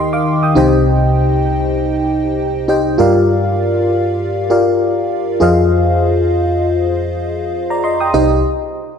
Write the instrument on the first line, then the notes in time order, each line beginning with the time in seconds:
fm electric piano
Already playing: D#2 D#3 D#4 G4 A#4 D#5 G5 C6
0.13 F5 D6
0.43 G5 D#6
0.55 C2 C3 D#4 G4 C5 D#5 G5
2.68 D#4 G4 C5 D#5 G5
2.98 G2 F4 G4 A#4 D5 F5
4.50 F4 G4 A#4 D5 F5
5.40 F2 F4 G#4 C5 D#5 F5
7.70 D5 A#5
7.84 D#5 C6
8.00 G5 D#6
8.14 C2 D#4 G4 C5 D#5